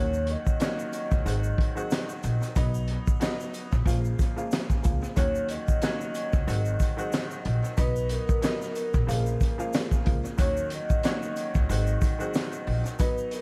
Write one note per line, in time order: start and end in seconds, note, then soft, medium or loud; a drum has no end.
0.00 0.34 D#2 loud
0.00 0.55 D#3 medium
0.00 0.56 F#3 medium
0.00 0.56 A#3 medium
0.00 0.56 C#4 medium
0.00 0.56 F#4 loud
0.00 0.25 C#5 loud
0.13 shaker medium
0.27 2.53 D#5 medium
0.27 closed hi-hat medium
0.47 kick medium
0.47 shaker medium
0.60 1.24 D#3 loud
0.60 1.24 F#3 medium
0.60 1.26 A#3 medium
0.60 1.26 C#4 medium
0.60 1.25 F#4 loud
0.60 snare loud
0.60 snare medium
0.60 closed hi-hat medium
0.60 shaker medium
0.79 shaker soft
0.93 closed hi-hat medium
0.93 shaker medium
1.11 1.22 C#2 medium
1.11 kick loud
1.11 shaker soft
1.25 1.51 G#1 loud
1.25 1.72 D#3 medium
1.25 1.72 F#3 medium
1.25 1.73 G#3 medium
1.25 1.73 C4 medium
1.25 1.73 F#4 loud
1.25 closed hi-hat loud
1.25 shaker medium
1.44 shaker soft
1.58 kick medium
1.58 closed hi-hat medium
1.75 2.50 D#3 medium
1.75 2.50 F#3 medium
1.75 2.50 G#3 medium
1.75 2.50 C4 medium
1.75 2.51 F#4 loud
1.75 shaker medium
1.91 snare loud
1.91 closed hi-hat loud
1.91 shaker medium
2.09 shaker medium
2.23 2.38 A#1 loud
2.23 closed hi-hat medium
2.23 shaker medium
2.43 closed hi-hat soft
2.43 shaker medium
2.55 2.95 B1 loud
2.55 3.16 F#3 medium
2.55 3.17 B3 medium
2.55 3.17 D#4 loud
2.55 kick loud
2.55 closed hi-hat medium
2.55 shaker medium
2.74 shaker medium
2.88 closed hi-hat medium
3.07 kick loud
3.07 shaker medium
3.20 3.86 F#3 medium
3.20 3.86 B3 medium
3.20 3.87 D#4 loud
3.20 snare loud
3.20 snare medium
3.20 closed hi-hat medium
3.20 shaker medium
3.40 shaker soft
3.54 closed hi-hat medium
3.54 shaker medium
3.72 3.83 A#1 medium
3.72 kick loud
3.72 shaker soft
3.85 4.11 A#1 loud
3.85 4.32 C#3 medium
3.85 4.33 F3 medium
3.85 4.33 G#3 medium
3.85 4.33 A#3 medium
3.85 4.33 F4 loud
3.85 kick medium
3.85 shaker medium
3.89 closed hi-hat loud
4.05 shaker soft
4.19 kick loud
4.19 closed hi-hat medium
4.19 shaker medium
4.36 4.80 C#3 medium
4.36 4.80 F3 medium
4.36 4.81 G#3 medium
4.36 4.81 A#3 medium
4.36 4.81 F4 loud
4.36 shaker soft
4.51 snare loud
4.51 closed hi-hat loud
4.51 shaker medium
4.70 kick medium
4.70 shaker medium
4.83 4.99 C#2 medium
4.83 5.14 C#3 medium
4.83 5.14 F3 medium
4.83 5.14 G#3 medium
4.83 5.15 A#3 medium
4.83 5.15 F4 medium
4.83 kick medium
4.83 closed hi-hat medium
4.83 shaker medium
5.04 shaker medium
5.16 5.56 D#2 loud
5.16 5.77 D#3 loud
5.16 5.77 F#3 medium
5.16 5.78 A#3 medium
5.16 5.78 C#4 medium
5.16 5.78 F#4 loud
5.16 5.46 C#5 loud
5.16 kick loud
5.16 closed hi-hat medium
5.16 shaker medium
5.35 shaker medium
5.49 7.74 D#5 medium
5.49 closed hi-hat medium
5.49 shaker soft
5.68 kick medium
5.68 shaker medium
5.82 6.46 D#3 loud
5.82 6.46 F#3 medium
5.82 6.48 A#3 medium
5.82 6.48 C#4 loud
5.82 6.47 F#4 loud
5.82 snare loud
5.82 closed hi-hat medium
5.82 shaker medium
6.01 shaker soft
6.15 closed hi-hat medium
6.15 shaker medium
6.33 6.44 C#2 medium
6.33 kick loud
6.33 shaker soft
6.47 6.72 G#1 loud
6.47 6.94 D#3 medium
6.47 6.94 F#3 medium
6.47 6.94 G#3 medium
6.47 6.95 C4 medium
6.47 6.95 F#4 loud
6.47 closed hi-hat loud
6.47 shaker medium
6.65 shaker soft
6.80 kick loud
6.80 closed hi-hat medium
6.80 shaker medium
6.97 7.71 D#3 medium
6.97 7.72 F#3 medium
6.97 7.72 G#3 medium
6.97 7.72 C4 medium
6.97 7.72 F#4 loud
6.97 shaker medium
7.12 snare loud
7.12 closed hi-hat loud
7.12 shaker medium
7.31 shaker medium
7.45 7.59 A#1 loud
7.45 closed hi-hat medium
7.64 shaker medium
7.77 8.17 B1 loud
7.77 8.38 F#3 medium
7.77 8.38 B3 medium
7.77 8.39 D#4 loud
7.77 8.07 B4 loud
7.77 kick loud
7.77 closed hi-hat loud
7.77 shaker medium
7.96 shaker medium
8.09 10.35 A#4 medium
8.09 closed hi-hat medium
8.09 shaker soft
8.29 kick loud
8.29 shaker medium
8.41 9.08 F#3 medium
8.41 9.08 B3 medium
8.41 9.08 D#4 loud
8.41 snare loud
8.41 closed hi-hat medium
8.41 shaker medium
8.62 snare soft
8.62 shaker soft
8.75 closed hi-hat medium
8.75 shaker medium
8.94 9.05 A#1 loud
8.94 kick loud
8.94 shaker soft
9.07 9.33 A#1 loud
9.07 9.54 C#3 medium
9.07 9.54 F3 medium
9.07 9.55 G#3 medium
9.07 9.55 A#3 medium
9.07 9.55 F4 loud
9.07 shaker medium
9.11 closed hi-hat loud
9.26 shaker soft
9.41 kick loud
9.41 closed hi-hat medium
9.41 shaker medium
9.58 10.02 C#3 loud
9.58 10.02 F3 medium
9.58 10.02 G#3 medium
9.58 10.03 A#3 medium
9.58 10.03 F4 loud
9.58 shaker medium
9.73 snare loud
9.73 closed hi-hat loud
9.73 shaker medium
9.91 kick medium
9.91 shaker medium
10.05 10.21 C#2 loud
10.05 10.36 C#3 medium
10.05 10.36 F3 medium
10.05 10.36 G#3 medium
10.05 10.36 A#3 medium
10.05 10.37 F4 medium
10.05 kick medium
10.05 closed hi-hat medium
10.25 shaker medium
10.38 10.77 D#2 loud
10.38 10.99 D#3 loud
10.38 10.99 F#3 medium
10.38 10.99 A#3 medium
10.38 11.00 C#4 medium
10.38 11.00 F#4 loud
10.38 10.68 C#5 loud
10.38 kick loud
10.38 closed hi-hat loud
10.38 shaker medium
10.57 shaker medium
10.70 12.97 D#5 medium
10.70 closed hi-hat medium
10.70 shaker soft
10.90 kick loud
10.90 shaker medium
11.03 11.67 D#3 medium
11.03 11.68 F#3 medium
11.03 11.69 A#3 medium
11.03 11.70 C#4 loud
11.03 11.69 F#4 loud
11.03 snare loud
11.03 snare medium
11.03 closed hi-hat medium
11.03 shaker medium
11.22 shaker soft
11.36 closed hi-hat medium
11.36 shaker medium
11.54 11.66 C#2 medium
11.54 kick loud
11.54 shaker soft
11.69 11.94 G#1 loud
11.69 12.16 D#3 loud
11.69 12.16 F#3 medium
11.69 12.16 G#3 medium
11.69 12.16 C4 medium
11.69 12.17 F#4 loud
11.69 closed hi-hat loud
11.69 shaker medium
11.87 shaker soft
12.01 kick loud
12.01 closed hi-hat medium
12.01 shaker medium
12.19 12.93 D#3 loud
12.19 12.93 F#3 medium
12.19 12.94 G#3 medium
12.19 12.94 C4 medium
12.19 12.94 F#4 loud
12.19 shaker medium
12.34 snare loud
12.34 closed hi-hat loud
12.34 shaker medium
12.52 shaker medium
12.67 12.81 A#1 loud
12.67 open hi-hat medium
12.86 closed hi-hat soft
12.86 shaker medium
12.99 13.41 F#3 medium
12.99 13.41 B3 medium
12.99 13.41 D#4 loud
12.99 13.29 B4 loud
12.99 kick loud
12.99 closed hi-hat loud
12.99 shaker medium
13.18 shaker medium
13.31 13.41 A#4 medium
13.31 closed hi-hat medium
13.31 shaker soft